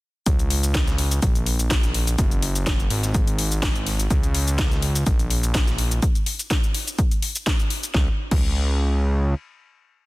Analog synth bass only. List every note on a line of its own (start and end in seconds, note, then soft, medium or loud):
0.26 1.20 C#2 medium
1.22 2.16 A#1 medium
2.19 2.88 F#1 medium
2.90 4.08 G#1 medium
4.10 5.04 C#2 medium
5.07 6.00 A#1 medium
7.95 8.09 C#2 loud
8.31 9.34 C#2 medium